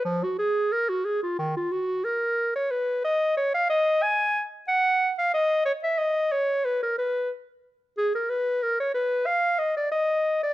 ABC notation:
X:1
M:4/4
L:1/16
Q:1/4=91
K:Ebm
V:1 name="Clarinet"
F, G A2 B G A F E, F G2 B3 d | c2 e2 d f e2 a3 z g3 f | e2 d _f e2 d2 c B c2 z4 | A B c2 B d c2 f2 e =d e3 d |]